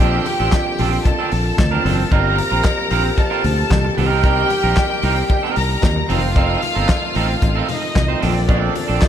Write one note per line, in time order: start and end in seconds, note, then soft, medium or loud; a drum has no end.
0.00 0.18 A#1 loud
0.00 2.10 D3 medium
0.00 6.06 A#3 medium
0.00 0.24 C4 medium
0.00 8.18 C4 medium
0.00 0.24 D4 medium
0.00 2.08 F4 medium
0.00 1.03 G4 medium
0.00 0.25 A4 loud
0.00 1.03 G5 loud
0.00 cowbell medium
0.26 muted clean electric guitar stroke soft
0.26 open hi-hat medium
0.26 muted conga medium
0.40 0.49 A1 medium
0.40 0.52 C4 medium
0.40 0.53 D4 medium
0.40 0.53 A4 medium
0.52 muted clean electric guitar stroke soft
0.52 kick loud
0.52 snare loud
0.52 clap medium
0.52 closed hi-hat medium
0.52 cowbell loud
0.52 high conga medium
0.67 muted clean electric guitar stroke soft
0.79 0.97 A#1 medium
0.79 0.97 C4 medium
0.79 0.92 D4 medium
0.79 0.91 A4 loud
0.79 open hi-hat medium
0.79 low conga medium
0.92 muted clean electric guitar stroke medium
1.05 2.09 A4 medium
1.05 2.09 A5 medium
1.05 muted clean electric guitar stroke soft
1.05 kick loud
1.05 closed hi-hat medium
1.05 cowbell medium
1.05 muted conga medium
1.05 low conga medium
1.19 1.31 C4 medium
1.19 1.31 D4 medium
1.19 1.32 A4 medium
1.32 1.50 A#1 loud
1.32 muted clean electric guitar stroke soft
1.32 open hi-hat medium
1.32 muted conga soft
1.44 muted clean electric guitar stroke soft
1.58 1.77 D2 medium
1.58 muted clean electric guitar stroke soft
1.58 kick loud
1.58 snare loud
1.58 clap medium
1.58 closed hi-hat medium
1.58 cowbell medium
1.58 high conga medium
1.71 1.83 C4 medium
1.71 1.84 D4 medium
1.71 1.85 A#4 medium
1.71 high conga medium
1.84 2.03 F#1 loud
1.84 2.02 C4 medium
1.84 1.97 D4 loud
1.84 1.96 A4 loud
1.84 open hi-hat medium
1.84 high conga medium
1.98 muted clean electric guitar stroke soft
2.11 2.39 G1 loud
2.11 3.96 F3 medium
2.11 2.36 C4 medium
2.11 2.36 F4 medium
2.11 6.06 G4 medium
2.11 3.16 A#4 medium
2.11 2.36 A#4 medium
2.11 3.16 A#5 loud
2.11 kick loud
2.11 closed hi-hat medium
2.11 cowbell medium
2.11 muted conga soft
2.38 muted clean electric guitar stroke soft
2.38 open hi-hat medium
2.38 muted conga medium
2.50 2.61 A#1 medium
2.50 2.63 C4 soft
2.50 2.64 F4 medium
2.50 2.64 A#4 medium
2.64 kick loud
2.64 snare loud
2.64 clap loud
2.64 closed hi-hat medium
2.64 cowbell loud
2.64 high conga medium
2.78 muted clean electric guitar stroke soft
2.91 3.09 A#1 medium
2.91 3.09 C4 medium
2.91 3.04 F4 medium
2.91 3.03 A#4 loud
2.91 open hi-hat medium
3.04 muted clean electric guitar stroke soft
3.17 3.95 A4 medium
3.17 3.95 A5 loud
3.17 muted clean electric guitar stroke soft
3.17 kick loud
3.17 closed hi-hat medium
3.17 cowbell medium
3.17 muted conga medium
3.30 3.43 C4 medium
3.30 3.43 F4 medium
3.30 3.44 A#4 medium
3.44 3.62 D2 loud
3.44 muted clean electric guitar stroke soft
3.44 open hi-hat medium
3.44 muted conga soft
3.44 low conga medium
3.58 muted clean electric guitar stroke soft
3.70 3.89 C2 medium
3.70 muted clean electric guitar stroke soft
3.70 kick loud
3.70 snare loud
3.70 clap medium
3.70 closed hi-hat medium
3.70 cowbell medium
3.70 high conga medium
3.84 muted clean electric guitar stroke medium
3.84 high conga medium
3.96 4.43 C2 loud
3.96 8.19 D#3 medium
3.96 6.08 G3 medium
3.96 4.11 C4 medium
3.96 4.10 D#4 loud
3.96 5.53 G4 medium
3.96 4.09 A#4 loud
3.96 5.53 G5 loud
3.96 open hi-hat medium
3.96 high conga medium
4.10 4.23 C4 medium
4.10 4.23 D#4 medium
4.10 4.24 A#4 medium
4.23 4.48 C4 medium
4.23 4.49 D#4 medium
4.23 4.49 A#4 medium
4.23 kick loud
4.23 closed hi-hat medium
4.23 cowbell medium
4.23 muted conga soft
4.50 muted clean electric guitar stroke soft
4.50 open hi-hat medium
4.50 muted conga medium
4.63 4.73 A#1 medium
4.63 4.76 C4 medium
4.63 4.76 D#4 medium
4.63 4.77 A#4 medium
4.76 muted clean electric guitar stroke soft
4.76 kick loud
4.76 snare loud
4.76 clap medium
4.76 closed hi-hat medium
4.76 cowbell medium
4.76 high conga medium
4.90 muted clean electric guitar stroke medium
5.03 5.21 C2 loud
5.03 5.21 C4 medium
5.03 5.16 D#4 medium
5.03 5.16 A#4 medium
5.03 open hi-hat medium
5.17 muted clean electric guitar stroke medium
5.30 muted clean electric guitar stroke soft
5.30 kick loud
5.30 closed hi-hat medium
5.30 cowbell medium
5.30 muted conga medium
5.43 5.55 C4 medium
5.43 5.56 D#4 medium
5.43 5.56 A#4 medium
5.56 5.75 C2 loud
5.56 6.09 A#4 medium
5.56 6.09 A#5 medium
5.56 muted clean electric guitar stroke soft
5.56 open hi-hat medium
5.56 muted conga soft
5.69 muted clean electric guitar stroke soft
5.82 6.01 D#2 medium
5.82 muted clean electric guitar stroke soft
5.82 kick loud
5.82 snare loud
5.82 clap medium
5.82 closed hi-hat medium
5.82 cowbell medium
5.82 high conga medium
5.96 muted clean electric guitar stroke medium
5.96 high conga medium
6.09 6.55 F1 loud
6.09 8.20 F3 medium
6.09 9.08 A3 medium
6.09 6.27 C4 loud
6.09 6.23 D#4 loud
6.09 7.66 F4 loud
6.09 8.20 F4 medium
6.09 6.21 A4 loud
6.09 7.66 F5 loud
6.09 open hi-hat medium
6.09 high conga medium
6.23 muted clean electric guitar stroke soft
6.35 6.60 C4 medium
6.35 6.61 D#4 medium
6.35 6.61 A4 medium
6.35 kick loud
6.35 closed hi-hat medium
6.35 cowbell medium
6.35 muted conga soft
6.62 muted clean electric guitar stroke soft
6.62 open hi-hat medium
6.62 muted conga medium
6.75 6.85 G1 medium
6.75 6.87 C4 medium
6.75 6.88 D#4 medium
6.75 6.88 A4 medium
6.88 muted clean electric guitar stroke soft
6.88 kick loud
6.88 snare loud
6.88 clap medium
6.88 closed hi-hat medium
6.88 cowbell loud
6.88 high conga medium
7.02 muted clean electric guitar stroke soft
7.15 7.34 A1 loud
7.15 7.33 C4 loud
7.15 7.29 D#4 loud
7.15 7.28 A4 loud
7.15 open hi-hat medium
7.29 muted clean electric guitar stroke soft
7.42 7.61 A1 medium
7.42 muted clean electric guitar stroke soft
7.42 kick loud
7.42 closed hi-hat medium
7.42 cowbell medium
7.42 muted conga medium
7.55 7.67 C4 medium
7.55 7.68 D#4 medium
7.55 7.68 A4 medium
7.68 8.21 D#4 medium
7.68 8.21 D#5 medium
7.68 muted clean electric guitar stroke medium
7.68 open hi-hat medium
7.68 low conga medium
7.82 muted clean electric guitar stroke medium
7.95 8.14 C2 medium
7.95 muted clean electric guitar stroke soft
7.95 kick loud
7.95 snare loud
7.95 clap loud
7.95 closed hi-hat medium
7.95 cowbell medium
7.95 high conga medium
8.08 8.20 C4 medium
8.08 8.21 D#4 medium
8.08 8.22 C5 medium
8.08 high conga medium
8.21 8.68 A#1 loud
8.21 9.08 D3 medium
8.21 9.08 A#3 medium
8.21 8.39 C4 medium
8.21 9.08 C4 medium
8.21 8.35 D4 medium
8.21 9.08 D4 loud
8.21 9.08 F4 medium
8.21 8.34 A4 loud
8.21 9.08 D5 loud
8.21 open hi-hat medium
8.21 high conga medium
8.35 muted clean electric guitar stroke soft
8.48 8.73 C4 medium
8.48 8.73 D4 medium
8.48 8.74 A4 medium
8.48 kick loud
8.48 closed hi-hat medium
8.48 cowbell medium
8.48 muted conga soft
8.75 muted clean electric guitar stroke soft
8.75 open hi-hat medium
8.75 muted conga medium
8.88 8.98 A#1 medium
8.88 9.00 C4 medium
8.88 9.01 D4 medium
8.88 9.02 A4 medium
9.01 muted clean electric guitar stroke soft
9.01 kick loud
9.01 snare loud
9.01 clap medium
9.01 closed hi-hat medium
9.01 cowbell loud
9.01 high conga medium